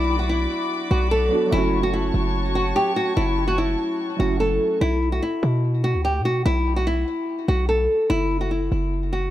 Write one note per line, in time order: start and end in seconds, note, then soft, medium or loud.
0.00 0.47 B1 loud
0.00 1.25 F#3 medium
0.00 1.27 B3 medium
0.00 1.29 D4 medium
0.00 0.17 E4 loud
0.00 1.31 F#4 medium
0.00 4.77 F#4 medium
0.00 1.49 D5 medium
0.00 1.49 B5 medium
0.00 1.49 D6 medium
0.19 0.28 F#4 medium
0.29 0.87 E4 medium
0.91 1.30 B1 loud
0.91 1.08 F#4 medium
1.11 1.50 A4 medium
1.29 1.45 F#3 medium
1.29 1.52 B3 medium
1.29 1.53 D4 soft
1.35 1.54 F#4 medium
1.47 4.13 F#3 medium
1.47 4.15 A3 medium
1.52 2.12 F#1 loud
1.52 4.17 C#4 medium
1.52 1.81 E4 loud
1.52 4.78 C#5 medium
1.52 4.78 A5 medium
1.52 4.78 C#6 medium
1.58 4.19 F#4 medium
1.83 1.92 F#4 medium
1.93 2.51 E4 medium
2.14 2.73 F#1 loud
2.55 2.72 F#4 medium
2.76 2.93 G4 medium
2.96 3.14 F#4 medium
3.17 3.76 F#1 loud
3.17 3.46 E4 medium
3.48 3.56 F#4 medium
3.58 4.16 E4 medium
4.17 4.59 F#1 loud
4.17 4.80 F#3 medium
4.17 4.81 A3 soft
4.17 4.82 C#4 medium
4.17 4.37 F#4 medium
4.22 4.83 E4 medium
4.40 4.79 A4 medium
4.81 5.21 B1 loud
4.81 5.10 E4 loud
5.12 5.21 F#4 medium
5.22 5.80 E4 medium
5.43 5.96 B2 loud
5.84 6.01 F#4 medium
5.94 6.21 D2 loud
6.05 6.22 G4 medium
6.20 6.44 B2 loud
6.25 6.42 F#4 medium
6.46 7.05 B1 loud
6.46 6.75 E4 loud
6.76 6.85 F#4 medium
6.87 7.45 E4 medium
7.48 7.88 B1 loud
7.48 7.66 F#4 medium
7.69 8.07 A4 medium
8.10 8.69 F#1 loud
8.10 8.39 E4 loud
8.41 8.49 F#4 medium
8.51 9.09 E4 medium
8.72 9.30 F#1 loud
9.13 9.30 F#4 medium